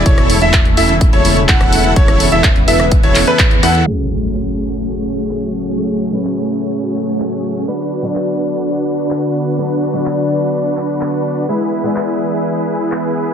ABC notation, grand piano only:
X:1
M:4/4
L:1/16
Q:1/4=126
K:F#m
V:1 name="Grand piano"
c3 e z2 e z2 c2 z f4 | c3 e z2 e z2 c2 B z2 f2 | z16 | z16 |
z16 | z16 | z16 |]